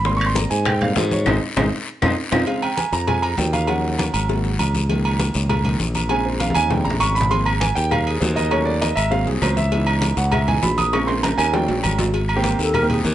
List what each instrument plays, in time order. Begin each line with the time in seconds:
Already playing: fingered electric bass G#1
0.05 grand piano G3 A#3 C4 C6, high bongo, high conga, long guiro
0.17 grand piano C#6, high bongo, high conga, claves
0.21 high timbale
0.26 grand piano C6
0.35 grand piano A#5, high bongo, high conga, short guiro
0.50 fingered electric bass G#2, grand piano G#5, high bongo, high conga, short guiro
0.65 grand piano G5, high bongo, high conga, low conga, high timbale, long guiro, claves
0.81 grand piano G3 A#3 C4 F5, high conga, low conga, high timbale
0.96 fingered electric bass G#2, grand piano D#5, high bongo, low bongo, high conga, low timbale, short guiro
1.11 grand piano C#5, high bongo, high conga, short guiro
1.26 fingered electric bass G#1, grand piano G#3 C4 D#4, low bongo, low conga, high timbale, long guiro, claves
1.57 fingered electric bass G#1, grand piano G#3 C4 D#4, low bongo, low conga, high timbale, long guiro, claves
2.02 fingered electric bass F2, grand piano C4 D#4 F4, low bongo, low conga, high timbale, long guiro, claves
2.32 fingered electric bass F2, grand piano C4 D#4 F4, low bongo, low conga, high timbale, long guiro, claves
2.47 grand piano C#3 G#3 C4 F5, cowbell, high conga, low agogo, long guiro
2.63 grand piano G5, high conga, low agogo
2.77 grand piano G#5, cowbell, high conga, low agogo, short guiro
2.93 fingered electric bass F2, grand piano A#5, cowbell, high conga, short guiro
3.07 grand piano G#5, cowbell, high conga, low conga, low agogo, long guiro
3.22 grand piano A#5, high conga, low agogo
3.38 fingered electric bass D#2, grand piano G5, cowbell, high conga, low timbale, short guiro
3.53 grand piano F5, cowbell, high conga, low agogo, short guiro
3.67 grand piano F3 F#3 C#4 F#5, cowbell, high conga, low agogo, long guiro
3.84 high conga
3.99 cowbell, high conga, low agogo, short guiro
4.14 fingered electric bass G#1, high conga, low agogo, short guiro
4.29 grand piano C3 F#3 A#3, cowbell, high conga, long guiro
4.45 cowbell, high conga
4.59 fingered electric bass C#2, cowbell, high conga, low agogo, short guiro
4.75 cowbell, high conga, short guiro
4.89 grand piano D#3 F3 A#3, cowbell, high conga, low agogo, long guiro
5.05 high conga, low agogo
5.19 cowbell, high conga, low agogo, short guiro
5.34 fingered electric bass C#2, cowbell, high conga, short guiro
5.49 cowbell, high conga, low conga, low agogo, long guiro
5.64 grand piano D#3 F3 A#3, high conga, low conga, low agogo
5.80 fingered electric bass A#1, cowbell, high conga, short guiro
5.95 cowbell, high conga, low agogo, short guiro
6.09 grand piano C#3 G#3 C4 G#5, cowbell, high conga, low agogo, long guiro
6.25 grand piano C5, high conga
6.40 grand piano F5, cowbell, high conga, low agogo, short guiro
6.50 high conga
6.55 fingered electric bass D#2, grand piano G#5, low agogo, short guiro
6.70 grand piano C#3 F3 G3 C4 G5, cowbell, low conga, long guiro
6.85 fingered electric bass A#1, grand piano A#5, cowbell
6.90 low conga
7.00 fingered electric bass G#1, grand piano C#6, cowbell, low agogo, short guiro
7.15 grand piano B5, cowbell, short guiro
7.21 low conga
7.29 grand piano F3 A#3 C4 C6, cowbell, high conga, low agogo, long guiro
7.46 grand piano A#5, high conga, low agogo, claves
7.60 grand piano G#5, cowbell, high conga, low agogo, short guiro
7.75 fingered electric bass D#2, grand piano G5, cowbell, high conga, short guiro
7.91 grand piano F5, cowbell, high conga, low conga, low agogo, long guiro, claves
8.07 grand piano G#4, low agogo
8.21 fingered electric bass D#2, grand piano C5, cowbell, high conga, low timbale, short guiro
8.36 grand piano D#5, cowbell, high conga, low agogo, short guiro
8.50 grand piano F#3 A3 C#4 C#5, cowbell, high conga, low agogo, long guiro, claves
8.65 grand piano D5, high conga
8.81 grand piano D#5, cowbell, high conga, low agogo, short guiro
8.96 fingered electric bass G#1, grand piano E5, high conga, low agogo, short guiro, claves
9.10 grand piano F#3 A#3 C4 F5, cowbell, high conga, long guiro
9.27 fingered electric bass C2, grand piano G#4, cowbell, high conga
9.42 fingered electric bass C#2, grand piano C5, cowbell, high conga, low timbale, low agogo, short guiro, claves
9.57 grand piano E5, cowbell, high conga, short guiro
9.72 grand piano E3 B3 D#4, cowbell, high conga, low agogo, long guiro
9.87 high conga, low agogo, claves
10.01 cowbell, high conga, low agogo, short guiro
10.17 fingered electric bass C#2, grand piano F#5, cowbell, high conga, short guiro
10.32 grand piano E5, cowbell, high conga, low conga, low agogo, long guiro, claves
10.47 grand piano E3 B3 D#4 G#5, high conga, low conga, low agogo
10.63 fingered electric bass A#1, grand piano B5, cowbell, high conga, low timbale, short guiro
10.78 grand piano D#6, cowbell, high conga, low agogo, short guiro
10.92 grand piano C#3 G#3 C4 C#6, cowbell, high conga, high timbale, low agogo, long guiro, claves
11.07 grand piano C6, high conga, high timbale
11.23 grand piano A#5, cowbell, high conga, high timbale, low agogo, short guiro
11.38 fingered electric bass D#2, grand piano G#5, high conga, high timbale, low agogo, short guiro, claves
11.52 grand piano F3 G3 C#4 G5, cowbell, high conga, low timbale, long guiro
11.68 fingered electric bass A#1, cowbell, high conga, low timbale
11.83 fingered electric bass G#1, cowbell, high conga, low agogo, short guiro, claves
11.98 cowbell, high conga, low timbale, short guiro
12.14 cowbell, high conga, low agogo, long guiro
12.29 high conga, low agogo, claves
12.36 grand piano A#3 C4 G4
12.44 cowbell, high conga, low agogo, short guiro
12.59 fingered electric bass D#2, alto flute A4, cowbell, high conga, short guiro
12.74 alto flute A#4, cowbell, high conga, low conga, low agogo, long guiro, claves
12.82 grand piano A#3 C4 G4
12.90 alto flute G#4, high conga, low conga, low agogo
13.04 fingered electric bass D#2, alto flute G4, cowbell, high conga, short guiro